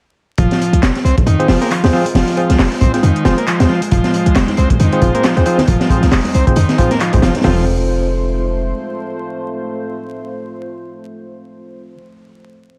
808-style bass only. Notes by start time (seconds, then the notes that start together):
0.38 F1
0.73 C2
0.83 F1
1.05 C2
1.27 F2
1.49 F1
1.83 D#2
2.15 F1
2.50 C2
2.59 F1
2.81 C2
3.03 F2
3.25 F1
3.60 D#2
3.92 F1
4.26 C2
4.36 F1
4.58 C2
4.80 F2
5.02 F1
5.37 D#2
5.68 F1
6.03 C2
6.13 F1
6.35 C2
6.57 F2
7.14 C2
7.23 F1
7.45 F1